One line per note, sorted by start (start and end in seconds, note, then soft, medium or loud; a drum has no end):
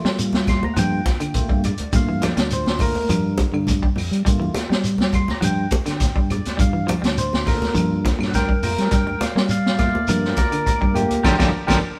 0.00 1.33 A3 medium
0.00 1.34 A#3 soft
0.00 1.34 F4 medium
0.05 0.61 G3 medium
0.05 0.26 G3 medium
0.05 snare medium
0.18 closed hi-hat medium
0.18 shekere loud
0.33 snare medium
0.33 high conga medium
0.47 0.62 C6 loud
0.47 kick medium
0.47 snare soft
0.47 closed hi-hat soft
0.47 low conga medium
0.47 claves medium
0.47 shekere soft
0.63 0.77 A#5 medium
0.63 high conga medium
0.74 1.00 G2 loud
0.74 0.98 F3 medium
0.74 0.77 F#5 medium
0.74 closed hi-hat medium
0.74 high conga medium
0.74 low conga medium
0.74 claves medium
0.74 shekere medium
0.79 1.62 G5 loud
1.06 kick medium
1.06 snare soft
1.06 closed hi-hat medium
1.06 high conga medium
1.06 shekere soft
1.20 1.42 D3 medium
1.20 closed hi-hat medium
1.20 claves medium
1.34 1.61 A3 soft
1.34 1.61 A#3 soft
1.34 1.61 F4 medium
1.34 kick medium
1.34 closed hi-hat medium
1.34 high conga medium
1.34 shekere medium
1.49 1.73 G2 medium
1.49 1.71 G3 medium
1.49 kick medium
1.64 1.93 D5 medium
1.64 closed hi-hat medium
1.64 low conga medium
1.64 claves medium
1.64 shekere soft
1.78 closed hi-hat soft
1.78 high conga medium
1.93 2.27 G2 medium
1.93 2.04 G3 medium
1.93 2.77 A3 medium
1.93 2.77 A#3 soft
1.93 2.77 F4 medium
1.93 2.23 F5 medium
1.93 kick loud
1.93 closed hi-hat medium
1.93 low conga medium
1.93 shekere medium
2.09 2.19 E3 medium
2.22 2.33 F3 medium
2.22 2.52 D5 medium
2.22 snare soft
2.22 closed hi-hat medium
2.22 high conga loud
2.22 claves medium
2.22 shekere soft
2.37 2.93 D2 medium
2.37 2.59 G3 medium
2.37 snare medium
2.37 closed hi-hat medium
2.50 2.81 C5 medium
2.50 closed hi-hat medium
2.50 shekere loud
2.66 snare medium
2.66 high conga medium
2.79 3.07 A3 soft
2.79 3.07 A#3 soft
2.79 3.07 F4 medium
2.79 3.38 A#4 loud
2.79 kick medium
2.79 open hi-hat medium
2.79 low conga medium
2.79 claves medium
2.79 shekere soft
2.95 high conga medium
3.09 3.44 G2 loud
3.09 3.31 F3 medium
3.09 closed hi-hat medium
3.09 low conga medium
3.09 claves medium
3.09 shekere medium
3.38 kick medium
3.38 closed hi-hat medium
3.38 high conga medium
3.38 shekere soft
3.52 3.87 G2 medium
3.52 3.75 D3 medium
3.52 claves medium
3.67 kick medium
3.67 closed hi-hat medium
3.67 high conga medium
3.67 shekere medium
3.83 4.04 G3 medium
3.83 kick medium
3.96 4.08 F2 medium
3.96 open hi-hat medium
3.96 low conga medium
3.96 claves medium
3.96 shekere soft
4.11 4.23 G3 medium
4.11 closed hi-hat medium
4.25 4.49 G2 medium
4.25 4.37 G3 medium
4.25 4.65 A3 soft
4.25 4.66 A#3 soft
4.25 4.66 F4 medium
4.25 kick loud
4.25 closed hi-hat medium
4.25 shekere medium
4.40 4.51 E3 medium
4.40 high conga medium
4.54 muted fingered electric bass stroke soft
4.54 snare soft
4.54 closed hi-hat medium
4.54 high conga loud
4.54 claves medium
4.54 shekere soft
4.70 4.92 G3 medium
4.70 5.27 G3 medium
4.70 snare medium
4.84 closed hi-hat medium
4.84 shekere medium
4.98 snare medium
4.98 high conga medium
5.13 5.28 C6 loud
5.13 kick medium
5.13 closed hi-hat soft
5.13 low conga medium
5.13 claves medium
5.13 shekere soft
5.28 5.43 A#5 medium
5.28 snare soft
5.28 high conga medium
5.40 5.65 G2 loud
5.40 5.63 F3 medium
5.40 5.44 F#5 medium
5.40 closed hi-hat medium
5.40 high conga medium
5.40 claves medium
5.40 shekere medium
5.45 6.29 G5 medium
5.71 kick medium
5.71 closed hi-hat medium
5.71 high conga loud
5.71 shekere soft
5.86 6.08 D3 medium
5.86 snare soft
5.86 closed hi-hat medium
5.86 claves medium
6.00 kick medium
6.00 snare soft
6.00 closed hi-hat medium
6.00 high conga medium
6.00 shekere medium
6.16 6.39 G2 medium
6.16 6.38 G3 medium
6.16 kick medium
6.30 6.59 D5 medium
6.30 closed hi-hat soft
6.30 low conga medium
6.30 claves medium
6.30 shekere soft
6.45 snare soft
6.45 closed hi-hat medium
6.45 high conga medium
6.57 6.94 G2 medium
6.57 6.69 G3 medium
6.57 6.88 F5 medium
6.57 kick loud
6.57 closed hi-hat medium
6.57 low conga medium
6.57 shekere medium
6.73 6.84 E3 medium
6.87 6.99 F3 medium
6.87 7.17 D5 medium
6.87 closed hi-hat medium
6.87 high conga loud
6.87 claves medium
6.87 shekere soft
7.02 7.60 D2 medium
7.02 7.24 G3 medium
7.02 snare medium
7.02 closed hi-hat medium
7.17 7.46 C5 medium
7.17 closed hi-hat medium
7.17 shekere medium
7.33 snare medium
7.33 high conga medium
7.46 8.30 A#3 medium
7.46 8.31 F4 medium
7.46 8.30 A4 medium
7.46 8.04 A#4 loud
7.46 kick medium
7.46 snare soft
7.46 open hi-hat medium
7.46 low conga medium
7.46 claves medium
7.46 shekere soft
7.62 snare soft
7.62 high conga medium
7.74 8.10 G2 loud
7.74 7.97 F3 loud
7.74 closed hi-hat medium
7.74 high conga medium
7.74 low conga medium
7.74 claves medium
7.74 shekere medium
8.05 kick medium
8.05 snare soft
8.05 closed hi-hat medium
8.05 high conga medium
8.05 shekere soft
8.19 8.53 G2 medium
8.19 8.41 A#2 medium
8.19 snare soft
8.19 claves medium
8.31 8.34 F#5 medium
8.31 kick medium
8.31 closed hi-hat medium
8.31 shekere medium
8.35 8.62 A#4 medium
8.35 8.63 G5 loud
8.35 snare soft
8.35 high conga medium
8.48 8.70 G3 medium
8.48 kick medium
8.62 8.75 F2 medium
8.62 8.89 A3 soft
8.62 8.89 A#3 soft
8.62 8.90 F4 medium
8.62 8.90 A#4 medium
8.62 8.92 G5 medium
8.62 open hi-hat medium
8.62 low conga medium
8.62 claves medium
8.62 shekere soft
8.78 8.89 G3 medium
8.78 snare soft
8.78 closed hi-hat medium
8.91 9.15 G2 medium
8.91 9.03 G3 medium
8.91 9.20 A#4 medium
8.91 9.21 G5 medium
8.91 kick loud
8.91 snare soft
8.91 closed hi-hat medium
8.91 shekere medium
9.07 9.18 G3 medium
9.07 high conga medium
9.21 9.49 D5 medium
9.21 9.49 F5 medium
9.21 muted fingered electric bass stroke soft
9.21 muted clean electric guitar stroke medium
9.21 snare soft
9.21 closed hi-hat medium
9.21 high conga medium
9.21 claves medium
9.21 shekere soft
9.35 9.92 G3 medium
9.35 9.58 A#3 medium
9.35 snare medium
9.49 9.78 D5 medium
9.49 9.78 F5 medium
9.49 closed hi-hat medium
9.49 shekere loud
9.66 snare medium
9.78 10.93 A3 medium
9.78 10.93 A#3 medium
9.78 10.93 F4 medium
9.78 10.07 D5 medium
9.78 10.08 F5 medium
9.78 kick medium
9.78 snare soft
9.78 closed hi-hat soft
9.78 low conga medium
9.78 claves medium
9.78 shekere soft
9.95 high conga medium
10.07 10.31 G2 loud
10.07 10.31 F3 medium
10.07 10.36 A#4 medium
10.07 10.37 D5 medium
10.07 closed hi-hat medium
10.07 low conga medium
10.07 claves medium
10.07 shekere medium
10.25 snare soft
10.36 10.65 A#4 medium
10.36 10.66 D5 medium
10.36 kick medium
10.36 snare soft
10.36 closed hi-hat medium
10.36 high conga medium
10.36 shekere soft
10.52 10.74 D3 medium
10.52 closed hi-hat medium
10.52 claves medium
10.66 10.94 A#4 medium
10.66 10.95 D5 medium
10.66 kick medium
10.66 closed hi-hat medium
10.66 high conga medium
10.66 shekere medium
10.81 11.05 G2 medium
10.81 11.03 G3 medium
10.81 kick medium
10.94 11.21 A3 soft
10.94 11.22 A#3 medium
10.94 11.22 F4 medium
10.94 11.22 G4 loud
10.94 closed hi-hat soft
10.94 low conga loud
10.94 claves medium
10.94 shekere soft
11.11 closed hi-hat medium
11.11 high conga medium
11.23 11.36 G1 medium
11.23 11.35 D3 loud
11.23 11.35 F3 loud
11.23 11.35 G3 loud
11.23 11.34 G4 loud
11.23 11.34 A#4 loud
11.23 11.34 D5 medium
11.23 kick medium
11.23 snare medium
11.23 high conga loud
11.23 claves medium
11.23 shekere loud
11.38 11.51 G1 loud
11.38 11.48 D3 loud
11.38 11.49 F3 loud
11.38 11.49 G3 medium
11.38 11.48 G4 loud
11.38 11.48 A#4 loud
11.38 11.48 D5 loud
11.38 kick medium
11.38 snare medium
11.38 high conga loud
11.38 claves medium
11.38 shekere medium
11.67 11.80 G1 loud
11.67 11.78 D3 loud
11.67 11.78 F3 medium
11.67 11.78 G3 loud
11.67 11.77 G4 loud
11.67 11.77 A#4 loud
11.67 11.77 D5 loud
11.67 kick medium
11.67 snare medium
11.67 high conga loud
11.67 claves loud
11.67 shekere loud